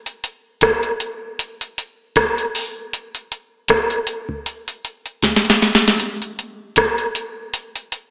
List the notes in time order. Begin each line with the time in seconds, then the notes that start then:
0.06 closed hi-hat
0.24 closed hi-hat
0.61 kick, cross-stick, closed hi-hat
0.83 closed hi-hat
1.00 closed hi-hat
1.39 closed hi-hat
1.61 closed hi-hat
1.78 closed hi-hat
2.16 kick, cross-stick, closed hi-hat
2.38 closed hi-hat
2.55 open hi-hat
2.93 closed hi-hat
3.15 closed hi-hat
3.32 closed hi-hat
3.68 kick, cross-stick, closed hi-hat
3.90 closed hi-hat
4.07 closed hi-hat
4.29 kick
4.46 closed hi-hat
4.68 closed hi-hat
4.85 closed hi-hat
5.06 closed hi-hat
5.22 kick, snare, closed hi-hat
5.36 snare
5.45 closed hi-hat
5.50 snare
5.62 snare, open hi-hat
5.75 snare
5.83 closed hi-hat
5.88 snare
6.00 closed hi-hat
6.22 closed hi-hat
6.39 closed hi-hat
6.76 kick, cross-stick, closed hi-hat
6.98 closed hi-hat
7.15 closed hi-hat
7.54 closed hi-hat
7.76 closed hi-hat
7.92 closed hi-hat